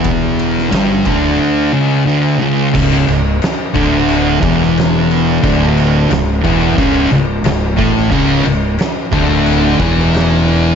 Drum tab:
CC |----------------|x-x-x-x-x-x-x-x-|x-x-x-x-x-x-x-x-|x-x-x-x-x-x-x-x-|
RD |x-x-x-x---------|----------------|----------------|----------------|
SD |---oo-----------|----o------oo---|----o-------o--o|----o------oo---|
BD |o-----o---------|o-----o---o-----|o-----o-o-----o-|o-----o---o-----|